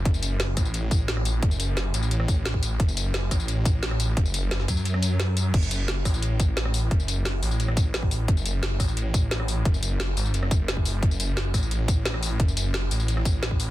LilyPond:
<<
  \new Staff \with { instrumentName = "Detuned saw bass" } { \clef bass \time 4/4 \key fis \minor \tempo 4 = 175 fis,,4. a,,2~ a,,8 | fis,,4. a,,2~ a,,8 | fis,,4. a,,2~ a,,8 | fis,,4. fis,2~ fis,8 |
fis,,4. a,,2~ a,,8 | fis,,4. a,,2~ a,,8 | fis,,4. a,,2~ a,,8 | fis,,4. gis,,8 fis,,2 |
fis,,4. a,,2~ a,,8 | fis,,4. a,,2~ a,,8 | }
  \new DrumStaff \with { instrumentName = "Drums" } \drummode { \time 4/4 <hh bd>16 tamb16 <hh tamb>8 <hh sn>8 <hh bd ss tamb>16 tamb16 <hh tamb>8 <hh bd tamb>8 <hh sn>16 ss16 <hh tamb>8 | <hh bd>16 tamb16 <hh tamb>8 <hh sn>8 <hh tamb>16 tamb16 <hh tamb>16 ss16 <hh bd tamb>8 <hh sn>16 bd16 <hh tamb>8 | <hh bd>16 tamb16 <hh tamb>8 <hh sn>8 <hh bd ss tamb>16 tamb16 <hh tamb>8 <hh bd tamb>8 <hh sn>16 ss16 <hh tamb>8 | <hh bd>16 tamb16 <hh tamb>8 <hh sn>16 sn16 <hh bd tamb>16 tamb16 <hh tamb>16 ss16 <hh tamb>8 <hh sn>8 <hh tamb>8 |
<cymc hh bd>16 tamb16 <hh tamb>8 <hh sn>8 <hho bd ss tamb>16 tamb16 <hh tamb>8 <hh bd tamb>8 <hh sn>16 ss16 <hho tamb>8 | <hh bd>16 tamb16 <hh tamb>8 <hh sn>8 <hho tamb>16 tamb16 <hh tamb>16 ss16 <hh bd tamb>8 <hh sn>16 bd16 <hho tamb>8 | <hh bd>16 tamb16 <hh tamb>8 <hh sn>8 <hho bd ss tamb>16 tamb16 <hh tamb>8 <hh bd tamb>8 <hh sn>16 ss16 <hho tamb>8 | <hh bd>16 tamb16 <hh tamb>8 <hh sn>8 <hho tamb>16 tamb16 <hh tamb>16 ss16 <hh bd tamb>8 <hh sn>16 bd16 <hho tamb>8 |
<hh bd>16 tamb16 <hh tamb>8 <hh sn>8 <hho bd ss tamb>16 tamb16 <hh tamb>8 <hh bd tamb>8 <hh sn>16 ss16 <hho tamb>8 | <hh bd>16 tamb16 <hh tamb>8 <hh sn>8 <hho tamb>16 tamb16 <hh tamb>16 ss16 <hh bd tamb>8 <hh sn>16 bd16 <hho tamb>8 | }
>>